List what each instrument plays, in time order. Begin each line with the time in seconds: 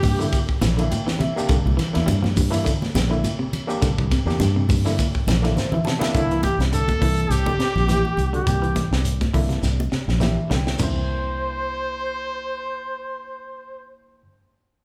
Already playing: clean electric guitar C3, trumpet G4, duduk G4
0.03 fingered electric bass G2, kick, open hi-hat, high conga, low conga, shekere
0.19 clean electric guitar D3, reed electric piano A#3 D4 E4, shekere
0.33 kick, ride bell, shekere
0.49 kick
0.61 fingered electric bass A#1, clean electric guitar E3, snare, ride bell, high conga, shekere
0.77 clean electric guitar D3, reed electric piano A#3 D4 E4, ride bell, shekere
0.91 reed electric piano G5, ride bell, high conga, shekere
1.07 clean electric guitar E3, snare
1.19 clean electric guitar C3, reed electric piano E5, ride bell, high conga, low conga, shekere
1.36 reed electric piano A#3 D4 G4, shekere
1.49 fingered electric bass C2, clean electric guitar D3, kick, ride bell, shekere
1.66 fingered electric bass C2, high conga
1.77 clean electric guitar E3, snare, ride bell, low conga, shekere
1.93 fingered electric bass E2, reed electric piano A#3 D4 E4, snare, ride bell, shekere
2.06 fingered electric bass G2, clean electric guitar G3, ride bell, high conga, shekere
2.23 clean electric guitar F3, snare, high conga
2.36 fingered electric bass G2, kick, open hi-hat, high conga, low conga, shekere
2.50 clean electric guitar E3, reed electric piano A#3 D4 E4, ride bell, shekere
2.65 clean electric guitar D3, kick, ride bell, shekere
2.82 snare, high conga
2.94 fingered electric bass A#1, snare, ride bell, high conga, low conga, shekere
3.10 clean electric guitar D3, reed electric piano A#3 D4 E4, shekere
3.24 ride bell, high conga, shekere
3.39 clean electric guitar C3
3.53 ride bell, low conga, shekere
3.67 reed electric piano A#3 D4 G4, shekere
3.82 fingered electric bass C2, clean electric guitar D3, kick, snare, ride bell, shekere
3.98 fingered electric bass C2, kick
4.11 clean electric guitar C3, kick, snare, ride bell, shekere
4.25 fingered electric bass E2, reed electric piano A#3 D4 G4, snare, shekere
4.40 fingered electric bass G2, snare, ride bell, high conga, shekere
4.56 clean electric guitar C3
4.69 fingered electric bass G2, kick, open hi-hat, high conga, low conga, shekere
4.85 clean electric guitar D3, reed electric piano A#3 D4 E4, snare, shekere
4.99 kick, ride bell, high conga, shekere
5.15 kick
5.27 fingered electric bass A#1, clean electric guitar E3, snare, ride bell, high conga, shekere
5.42 clean electric guitar D3, reed electric piano A#3 D4 E4, snare, ride bell, shekere
5.56 reed electric piano C5, snare, low conga, shekere
5.72 clean electric guitar E3, reed electric piano E5, low conga
5.85 clean electric guitar C3, reed electric piano A5, snare, low conga, shekere
5.99 reed electric piano A#3 D4 E4, snare, low conga
6.04 shekere
6.14 fingered electric bass C2, clean electric guitar D3, reed electric piano A#3 D4 E4, duduk E4, trumpet E4, kick, closed hi-hat, shekere
6.31 clean electric guitar E3, closed hi-hat
6.43 trumpet G4, duduk G4, kick, closed hi-hat, high conga, shekere
6.59 fingered electric bass C2, snare, closed hi-hat
6.73 clean electric guitar D3, trumpet A4, duduk A4, closed hi-hat, high conga, shekere
6.88 kick, closed hi-hat, high conga
7.00 fingered electric bass C2, clean electric guitar E3, reed electric piano A#3 D4 E4, kick, open hi-hat, low conga, shekere
7.18 closed hi-hat
7.30 fingered electric bass C2, duduk G4, trumpet G4, snare, closed hi-hat, high conga, shekere
7.46 clean electric guitar D3, kick, high conga
7.59 clean electric guitar C3, muted fingered electric bass stroke, snare, closed hi-hat, shekere
7.76 fingered electric bass A#1, snare, low conga
7.87 clean electric guitar E3, reed electric piano A#3 D4 E4, snare, closed hi-hat, high conga, shekere
8.05 high conga
8.17 fingered electric bass C2, closed hi-hat, low conga, shekere
8.33 clean electric guitar D3, reed electric piano D4 G4, duduk G4, trumpet G4, closed hi-hat
8.46 fingered electric bass C2, reed electric piano A#3 D4 G4, kick, closed hi-hat, high conga, shekere
8.62 clean electric guitar E3, closed hi-hat
8.76 kick, snare, closed hi-hat, high conga, shekere
8.91 fingered electric bass C2, snare
9.04 closed hi-hat, high conga, shekere
9.21 kick, snare, closed hi-hat, high conga
9.34 fingered electric bass C2, clean electric guitar D3, reed electric piano A#3 D4 E4, kick, open hi-hat, low conga, shekere
9.49 clean electric guitar C3, snare, closed hi-hat
9.63 fingered electric bass C2, snare, high conga, shekere
9.80 high conga
9.92 clean electric guitar C3, muted fingered electric bass stroke, snare, shekere
10.08 fingered electric bass A#1, snare
10.20 clean electric guitar E3, reed electric piano A#3 D4 G4 E5, snare, high conga, shekere
10.50 fingered electric bass C2, clean electric guitar D3, reed electric piano G5, snare, low conga, shekere
10.65 reed electric piano D4 E4, snare
10.78 fingered electric bass C2, clean electric guitar C3, reed electric piano A#3 D4, duduk C5, trumpet C5, kick, floor tom, crash, low conga, shekere
10.82 reed electric piano E4